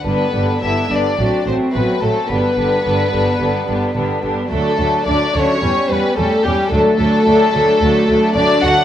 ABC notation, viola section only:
X:1
M:4/4
L:1/8
Q:1/4=109
K:G
V:1 name="Viola section" clef=bass
[D,G,] [D,G,] [D,G,] [D,G,] F, F, F, F, | [D,G,] [D,G,] [D,G,] [D,G,] [D,G,] [D,G,] [D,G,] [D,G,] | [D,F,] [D,F,] [D,F,] [D,F,] G, G, G, G, | [D,F,] [D,F,] [D,F,] [D,F,] [D,F,] [D,F,] [D,F,] [D,F,] |]